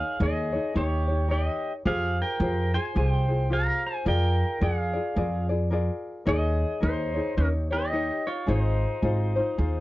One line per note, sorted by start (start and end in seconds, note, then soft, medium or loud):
0.00 0.19 D#4 medium
0.00 0.17 G#4 medium
0.00 0.19 G#4 medium
0.00 0.19 A#4 medium
0.00 0.20 C#5 medium
0.00 0.22 F5 medium
0.20 0.56 D#2 medium
0.20 0.53 D#4 medium
0.20 0.52 G#4 medium
0.20 0.73 G#4 medium
0.20 0.53 A#4 medium
0.20 0.51 C#5 medium
0.20 0.76 D#5 medium
0.52 0.74 D#4 soft
0.52 0.75 G#4 soft
0.52 0.75 C#5 soft
0.74 1.47 D#2 medium
0.74 1.08 D#4 medium
0.74 1.08 G4 medium
0.74 1.28 G4 medium
0.74 1.08 A#4 medium
0.74 1.06 C#5 medium
0.74 1.31 C#5 medium
1.08 1.28 D#4 soft
1.08 1.28 G4 soft
1.08 1.29 C#5 soft
1.28 1.85 D#4 medium
1.28 1.85 G4 medium
1.28 1.72 G4 medium
1.28 1.84 A#4 medium
1.28 1.86 C#5 medium
1.28 1.72 D#5 medium
1.85 2.21 F2 medium
1.85 2.40 F4 medium
1.85 2.39 G4 medium
1.85 2.41 G#4 medium
1.85 2.17 G#4 medium
1.85 2.41 C5 medium
1.85 2.20 F5 medium
2.22 2.72 A#4 medium
2.22 2.72 G5 medium
2.40 2.76 F2 medium
2.40 2.74 F4 medium
2.40 2.73 G4 medium
2.40 2.74 G#4 medium
2.40 2.73 C5 medium
2.74 2.95 F4 soft
2.74 2.95 G#4 soft
2.74 2.94 C5 medium
2.74 2.95 C5 medium
2.74 2.97 G#5 medium
2.95 3.68 C2 medium
2.95 3.29 F4 medium
2.95 3.28 G4 soft
2.95 3.28 G#4 medium
2.95 3.27 C5 medium
2.95 3.48 C5 medium
2.95 3.08 G#5 loud
3.08 3.53 G5 loud
3.28 3.49 F4 soft
3.28 3.50 G#4 soft
3.28 3.49 C5 soft
3.50 4.06 F4 medium
3.50 4.05 G4 medium
3.50 4.06 G#4 medium
3.50 4.06 C5 medium
3.50 3.83 F5 medium
3.50 3.86 A#5 medium
3.87 4.06 C5 medium
3.87 4.08 G#5 medium
4.05 4.42 F2 medium
4.05 4.60 F4 medium
4.05 4.61 G#4 medium
4.05 4.60 A#4 medium
4.05 4.59 A#4 medium
4.05 4.61 D5 medium
4.05 4.64 G5 loud
4.60 4.97 F2 medium
4.60 4.94 F4 medium
4.60 4.93 G#4 medium
4.60 5.46 G#4 medium
4.60 4.94 A#4 medium
4.60 4.92 D5 medium
4.60 5.46 F5 medium
4.93 5.15 F4 soft
4.93 5.16 G#4 soft
4.93 5.16 D5 medium
5.16 5.88 F2 medium
5.16 5.50 F4 medium
5.16 5.49 G#4 medium
5.16 5.49 A#4 medium
5.16 5.48 D5 medium
5.49 5.70 F4 soft
5.49 5.70 G#4 medium
5.49 5.71 D5 medium
5.70 6.26 F4 medium
5.70 6.26 G#4 medium
5.70 6.25 A#4 medium
5.70 6.27 D5 medium
6.25 6.63 D#2 medium
6.25 6.81 D#4 medium
6.25 6.80 G#4 medium
6.25 6.79 A#4 medium
6.25 6.82 C#5 medium
6.25 6.83 D#5 loud
6.30 6.80 G#4 medium
6.80 7.18 D#2 medium
6.80 7.15 D#4 medium
6.80 7.34 D#4 medium
6.80 7.14 G#4 medium
6.80 7.14 A#4 medium
6.80 7.34 C5 medium
6.80 7.13 C#5 medium
7.14 7.36 D#4 soft
7.14 7.37 G#4 soft
7.14 7.37 C#5 medium
7.36 8.09 D#2 medium
7.36 7.47 C#4 medium
7.36 7.70 D#4 medium
7.36 7.71 G4 medium
7.36 7.70 A#4 medium
7.36 7.47 A#4 medium
7.36 7.69 C#5 medium
7.70 7.92 D#4 soft
7.70 7.93 G4 soft
7.70 8.23 G4 medium
7.70 7.92 C#5 soft
7.70 8.28 D#5 loud
7.92 8.47 D#4 medium
7.92 8.47 G4 medium
7.92 8.46 A#4 medium
7.92 8.48 C#5 medium
8.27 8.47 F4 medium
8.27 8.49 C#5 medium
8.46 8.84 G#1 medium
8.46 9.03 D#4 medium
8.46 9.80 D#4 medium
8.46 9.02 F4 medium
8.46 9.02 G#4 medium
8.46 9.04 C5 medium
8.46 9.80 C5 medium
9.02 9.38 G#1 medium
9.02 9.36 D#4 medium
9.02 9.36 F4 medium
9.02 9.36 G#4 medium
9.02 9.34 C5 medium
9.36 9.57 D#4 soft
9.36 9.58 F4 medium
9.36 9.58 C5 medium
9.58 9.80 D#2 medium
9.58 9.80 D#4 medium
9.58 9.80 F4 medium
9.58 9.80 G#4 medium
9.58 9.80 C5 medium